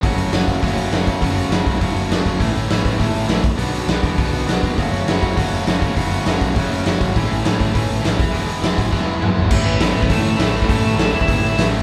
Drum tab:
CC |----------------|----------------|----------------|----------------|
HH |o-o-o-o-o-o-o-o-|o-o-o-o-o-o-o-o-|o-o-o-o-o-o-o-o-|o-o-o-o-o-o-o-o-|
SD |----o-------o---|----o-------o---|----o-------o---|----o-------o---|
T2 |----------------|----------------|----------------|----------------|
FT |----------------|----------------|----------------|----------------|
BD |o-----o-o-----o-|o-----o-o-----o-|o-----o-o-----o-|------o-o-----o-|

CC |----------------|----------------|----------------|----------------|
HH |o-o-o-o-o-o-o-o-|o-o-o-o-o-o-o-o-|o-o-o-o-o-o-o-o-|o-o-o-o---------|
SD |----o-------o---|----o-------o---|----o-------o---|----o---o-------|
T2 |----------------|----------------|----------------|------------o---|
FT |----------------|----------------|----------------|--------------o-|
BD |o-----o-o-----o-|o-----o-o-----o-|o-----o-o-----o-|------o-o-------|

CC |x---------------|----------------|
HH |----o---o---o---|o---o---o---o---|
SD |----o-------o---|----o-------o---|
T2 |----------------|----------------|
FT |----------------|----------------|
BD |o------oo------o|o------oo-------|